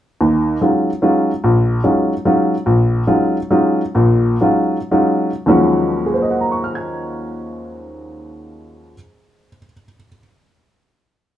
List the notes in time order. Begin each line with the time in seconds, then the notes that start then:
0.21 D#2 D#3
0.61 F#3 G#3 C#4 D#4 F4
1.02 F#3 G#3 C#4 D#4 F4
1.44 A#1
1.84 F#3 G#3 C#4 D#4 F4
2.25 F#3 G#3 C#4 D#4 F4
2.66 A#1
3.07 F#3 G#3 C#4 D#4 F4
3.51 F#3 G#3 C#4 D#4 F4
3.95 A#1 A#2
4.41 F#3 G#3 C#4 D#4 F4
4.91 F#3 G#3 C#4 D#4 F4
5.46 D#2 D#3 F3 F#3 G#3 C#4
6.06 G#4
6.14 C5
6.22 D#5
6.31 F#5
6.41 A#5
6.52 C#6
6.64 F6
6.75 G#6